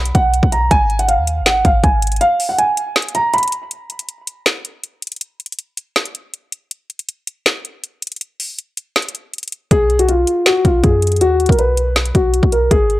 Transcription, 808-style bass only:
Already playing: B1
0.15 B1
0.43 B1
0.71 G#1
1.18 D#2
1.41 G#1
1.65 G#1
1.84 G#1
9.71 B1
10.65 B1
10.84 F#2
11.21 D#2
11.49 B1
12.15 B1
12.43 B1
12.71 G#1

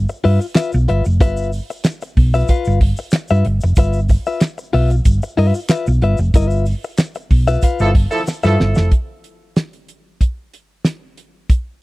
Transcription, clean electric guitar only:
0.09 muted clean electric guitar stroke
0.24 F4 B4 E5
0.41 muted clean electric guitar stroke
0.55 F4 B4 E5
0.72 muted clean electric guitar stroke
0.88 F4 B4 E5
1.05 muted clean electric guitar stroke
1.21 F4 B4 E5
1.70 muted clean electric guitar stroke
1.86 muted clean electric guitar stroke
2.02 muted clean electric guitar stroke
2.34 F4 B4 E5
2.49 F4 B4 F5
2.82 muted clean electric guitar stroke
2.99 muted clean electric guitar stroke
3.15 muted clean electric guitar stroke
3.31 F4 B4 E5
3.46 muted clean electric guitar stroke
3.64 muted clean electric guitar stroke
3.78 F4 B4 E5
4.10 muted clean electric guitar stroke
4.27 F4 B4 E5
4.58 muted clean electric guitar stroke
4.73 F4 B4 E5
4.91 muted clean electric guitar stroke
5.23 muted clean electric guitar stroke
5.37 F4 B4 E5
5.55 muted clean electric guitar stroke
5.70 F4 B4 E5
5.87 muted clean electric guitar stroke
6.02 F4 B4 E5
6.20 muted clean electric guitar stroke
6.35 E4 A#4 D#5
6.47 F4 B4 E5
6.85 muted clean electric guitar stroke
7.00 muted clean electric guitar stroke
7.16 muted clean electric guitar stroke
7.48 F4 B4 E5
7.63 F4 B4 F5
7.94 muted clean electric guitar stroke
8.11 muted clean electric guitar stroke
8.28 muted clean electric guitar stroke
8.44 F4 B4 E5
8.59 muted clean electric guitar stroke
8.76 muted clean electric guitar stroke

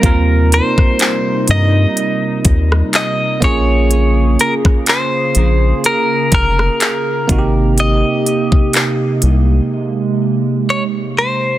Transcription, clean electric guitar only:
Already playing: A#4
0.54 C5
1.51 D#5
2.96 D#5
3.44 C#5
4.41 A#4
4.89 C5
5.86 A#4
6.34 A#4
7.80 D#5
10.70 C#5
11.18 C5

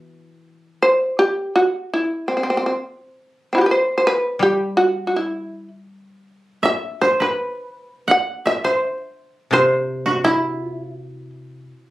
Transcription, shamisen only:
0.82 C5
1.19 G4
1.56 F#4
1.94 E4
2.28 C4
2.37 C4
2.43 C4
2.50 C4
2.57 C4
2.66 C4
3.53 C4 E4
3.58 F#4 G4
3.66 B4
3.71 C5
3.98 C5
4.07 B4
4.43 G4
4.77 F#4
5.07 F#4
5.16 E4
6.65 E5
7.02 C5
7.22 B4
8.11 F#5
8.47 E5
8.65 C5
9.53 C5
10.25 E4

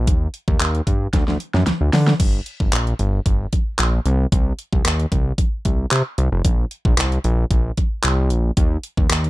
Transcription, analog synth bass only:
0.07 D#2
0.48 D#2
0.61 D#2
0.87 G2
1.13 D2
1.28 D2
1.54 F#2
1.67 D2
1.81 D2
1.93 D3
2.20 G1
2.60 G1
2.73 A#1
2.99 G1
3.26 G1
3.79 A#1
4.06 C2
4.32 C2
4.73 C2
4.85 D#2
5.12 C2
5.65 C2
5.92 C3
6.18 C2
6.32 F1
6.45 A#1
6.85 A#1
6.98 C2
7.25 A#1
7.51 A#1
8.04 C2
8.31 A#1
8.57 D#2
8.97 D#2
9.10 D#2

